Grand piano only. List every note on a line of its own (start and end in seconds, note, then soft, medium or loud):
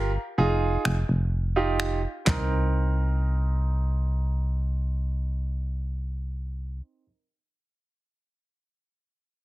0.38 0.95 D#4 medium
0.38 0.95 F4 medium
0.38 0.95 G#4 medium
1.56 1.99 D#4 medium
1.56 1.99 F4 medium
1.56 1.99 G4 medium
2.25 7.02 C4 medium
2.25 7.04 D#4 medium
2.25 7.06 A#4 medium